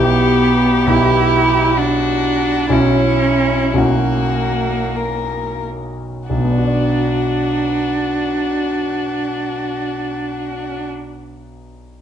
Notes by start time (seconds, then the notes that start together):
Already playing: B1 B3 E4 G4
0.87 B1 B3 E4 G4
1.77 D4 F#4
2.69 B1 C#4 E4 F#4
3.74 B1 A#3 C#4 E4 F#4
4.96 A#4
6.29 B1 D4 F#4
6.37 B2
6.44 B3
6.51 D4
6.58 F#4
6.65 D5